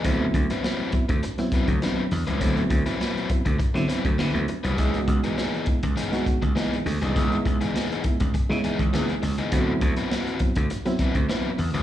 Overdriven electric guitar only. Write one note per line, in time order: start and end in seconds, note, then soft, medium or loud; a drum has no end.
0.05 0.24 F#3 medium
0.05 0.24 C4 loud
0.05 0.24 E4 medium
0.05 0.24 B4 loud
0.35 muted overdriven electric guitar stroke soft
0.51 0.63 F#3 soft
0.51 0.63 C4 soft
0.51 0.64 E4 medium
0.51 0.64 B4 medium
0.64 0.91 F#3 medium
0.64 0.91 C4 medium
0.64 0.92 E4 loud
0.64 0.92 B4 loud
0.94 muted overdriven electric guitar stroke soft
1.09 muted overdriven electric guitar stroke soft
1.23 muted overdriven electric guitar stroke medium
1.39 muted overdriven electric guitar stroke medium
1.53 1.72 F#3 medium
1.53 1.69 C4 medium
1.53 1.68 E4 medium
1.53 1.68 B4 medium
1.69 muted overdriven electric guitar stroke soft
1.83 2.01 F#3 medium
1.83 2.02 C4 medium
1.83 2.02 E4 medium
1.83 2.02 B4 medium
2.12 muted overdriven electric guitar stroke medium
2.27 2.39 F#3 medium
2.27 2.40 C4 medium
2.27 2.40 E4 medium
2.27 2.40 B4 medium
2.40 2.60 F#3 loud
2.40 2.60 C4 loud
2.40 2.60 E4 loud
2.40 2.60 B4 loud
2.70 muted overdriven electric guitar stroke soft
2.86 2.98 F#3 medium
2.86 2.99 C4 medium
2.86 2.99 E4 medium
2.86 3.00 B4 medium
2.99 3.27 F#3 medium
2.99 3.28 C4 medium
2.99 3.28 E4 medium
2.99 3.28 B4 loud
3.30 muted overdriven electric guitar stroke soft
3.45 muted overdriven electric guitar stroke soft
3.59 muted overdriven electric guitar stroke medium
3.74 muted overdriven electric guitar stroke soft
3.88 4.08 F#3 medium
3.88 4.04 C4 loud
3.88 4.04 E4 loud
3.88 4.04 B4 loud
4.05 muted overdriven electric guitar stroke soft
4.18 4.38 F#3 medium
4.18 4.38 C4 medium
4.18 4.38 E4 medium
4.18 4.38 B4 loud
4.49 muted overdriven electric guitar stroke soft
4.64 4.77 F#3 medium
4.64 4.78 C4 medium
4.64 4.78 E4 medium
4.64 4.78 B4 medium
4.78 4.97 E3 medium
4.78 4.97 B3 medium
4.78 4.98 D#4 medium
4.78 4.98 G#4 loud
5.08 muted overdriven electric guitar stroke soft
5.24 5.36 E3 medium
5.24 5.37 B3 medium
5.24 5.37 D#4 medium
5.24 5.37 G#4 medium
5.38 5.65 E3 medium
5.38 5.65 B3 medium
5.38 5.65 D#4 loud
5.38 5.66 G#4 medium
5.67 muted overdriven electric guitar stroke soft
5.83 muted overdriven electric guitar stroke medium
5.96 6.24 E3 medium
5.96 6.24 B3 loud
5.96 6.24 D#4 loud
5.96 6.24 G#4 loud
6.27 muted overdriven electric guitar stroke soft
6.42 muted overdriven electric guitar stroke medium
6.55 6.75 E3 medium
6.55 6.75 B3 medium
6.55 6.75 D#4 loud
6.55 6.75 G#4 loud
6.86 muted overdriven electric guitar stroke soft
7.02 7.14 E3 medium
7.02 7.15 B3 medium
7.02 7.15 D#4 medium
7.02 7.15 G#4 medium
7.16 7.35 E3 medium
7.16 7.35 B3 loud
7.16 7.35 D#4 loud
7.16 7.35 G#4 loud
7.45 muted overdriven electric guitar stroke soft
7.61 7.73 E3 medium
7.61 7.73 B3 medium
7.61 7.73 D#4 medium
7.61 7.74 G#4 medium
7.74 8.02 E3 medium
7.74 8.02 B3 medium
7.74 8.02 D#4 loud
7.74 8.02 G#4 loud
8.04 muted overdriven electric guitar stroke soft
8.20 muted overdriven electric guitar stroke soft
8.34 muted overdriven electric guitar stroke soft
8.50 muted overdriven electric guitar stroke soft
8.64 8.83 E3 medium
8.64 8.79 B3 medium
8.64 8.79 D#4 medium
8.64 8.79 G#4 loud
8.80 muted overdriven electric guitar stroke soft
8.93 9.12 E3 medium
8.93 9.12 B3 medium
8.93 9.12 D#4 loud
8.93 9.13 G#4 loud
9.22 muted overdriven electric guitar stroke soft
9.38 9.51 E3 medium
9.38 9.52 B3 medium
9.38 9.52 D#4 medium
9.38 9.52 G#4 medium
9.52 9.71 C4 medium
9.52 9.71 E4 medium
9.52 9.71 F#4 loud
9.52 9.71 B4 loud
9.82 muted overdriven electric guitar stroke soft
9.97 10.10 C4 soft
9.97 10.10 E4 medium
9.97 10.10 F#4 medium
9.97 10.11 B4 medium
10.11 10.38 C4 loud
10.11 10.38 E4 loud
10.11 10.39 F#4 loud
10.11 10.39 B4 loud
10.41 muted overdriven electric guitar stroke soft
10.56 muted overdriven electric guitar stroke soft
10.70 muted overdriven electric guitar stroke soft
10.86 muted overdriven electric guitar stroke medium
10.99 11.18 C4 medium
10.99 11.15 E4 medium
10.99 11.15 F#4 medium
10.99 11.15 B4 loud
11.16 muted overdriven electric guitar stroke soft
11.29 11.48 C4 medium
11.29 11.48 E4 medium
11.29 11.49 F#4 medium
11.29 11.49 B4 medium
11.58 muted overdriven electric guitar stroke soft
11.74 11.83 C4 medium
11.74 11.83 E4 medium
11.74 11.83 F#4 medium
11.74 11.83 B4 medium